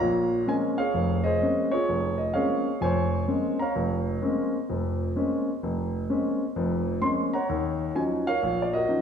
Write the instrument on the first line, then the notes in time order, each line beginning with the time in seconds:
grand piano
Already playing: C#5 F5 A#5
0.01 A#1 A#2
0.46 G#3 A#3 C4 C#4 G#5
0.78 G#4 C#5 F5
0.94 F1 F2
1.24 G#4 C5 D#5
1.42 G#3 A#3 C4 C#4
1.72 F4 G#4 C#5
1.89 F1
2.18 D#5
2.34 G#3 A#3 C4 C#4 G#4 C#5 F5
2.81 F1 F2 C5 C#5 G#5
3.27 G#3 A#3 C4 C#4
3.59 C#5 F5 A#5
3.75 F1
4.22 G#3 A#3 C4 C#4
4.69 F1 F2
5.16 G#3 A#3 C4 C#4
5.63 F1
6.09 G#3 A#3 C4 C#4
6.56 F1 F2
7.01 G#3 A#3 C4 C#4 C6
7.33 C#5 F#5 A#5
7.49 D#2
7.95 F3 F#3 C#4 D#4 G#5
8.27 A#4 C#5 F5
8.43 A#1
8.62 D5
8.73 F#4 A#4 D#5
8.88 F3 F#3 C#4 D#4